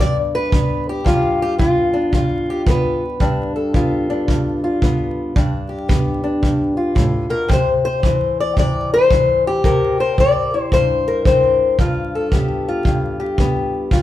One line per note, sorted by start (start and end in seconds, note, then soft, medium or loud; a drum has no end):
0.00 1.04 G2 medium
0.00 0.52 B3 medium
0.00 0.16 D5 loud
0.35 0.88 B4 medium
0.52 1.10 B3 medium
0.52 kick medium
0.89 1.41 G4 medium
1.04 2.13 G2 medium
1.04 1.58 F4 medium
1.04 kick medium
1.42 1.54 G4 medium
1.59 2.67 B3 medium
1.59 2.13 F4 medium
1.59 kick medium
1.94 3.21 D4 soft
2.13 3.20 G2 medium
2.13 3.02 F4 medium
2.13 kick medium
2.50 2.61 G4 medium
2.67 3.59 B3 medium
2.67 3.55 B4 medium
2.67 kick medium
3.20 4.28 G2 medium
3.20 4.09 D4 medium
3.20 kick medium
3.56 5.34 A4 soft
3.74 4.82 B3 medium
3.74 4.63 F4 medium
3.74 kick medium
4.10 5.34 D4 medium
4.28 5.35 G2 medium
4.28 kick medium
4.64 5.34 F4 soft
4.82 5.34 B3 medium
4.82 kick medium
5.36 6.42 G2 medium
5.36 6.22 D4 soft
5.36 kick medium
5.69 7.30 G4 soft
5.89 7.48 B3 medium
5.89 kick medium
6.24 7.48 D4 soft
6.43 6.95 G2 medium
6.43 kick medium
6.77 7.48 F4 soft
6.95 7.29 A2 medium
6.95 kick medium
7.30 7.48 B2 soft
7.30 7.50 A#4 medium
7.48 8.03 C3 medium
7.48 kick medium
7.53 7.69 C5 medium
7.85 8.38 C5 medium
8.03 9.10 E3 medium
8.03 kick medium
8.40 8.58 D5 medium
8.57 9.11 C3 medium
8.57 8.93 D5 loud
8.57 kick medium
8.94 9.46 C5 medium
9.11 9.63 E3 medium
9.11 kick medium
9.47 10.00 G4 medium
9.64 10.72 C3 medium
9.64 10.53 A#4 medium
9.64 kick medium
10.00 10.19 C5 medium
10.18 11.25 C4 medium
10.18 10.62 D5 medium
10.18 kick medium
10.54 11.77 E4 soft
10.62 10.73 C5 medium
10.72 11.78 G2 medium
10.72 11.26 C5 medium
10.72 kick medium
11.08 11.80 A#4 medium
11.25 11.77 C4 medium
11.25 11.80 C5 medium
11.25 kick medium
11.79 12.85 G2 medium
11.79 12.68 F4 medium
11.79 kick medium
12.15 13.92 A4 soft
12.32 13.39 B3 medium
12.32 13.19 G4 medium
12.32 kick medium
12.68 13.91 F4 medium
12.85 13.91 G2 medium
12.85 kick medium
13.20 13.90 G4 medium
13.38 13.91 B3 medium
13.38 kick medium
13.91 14.02 G2 medium
13.91 14.02 F4 soft
13.91 kick medium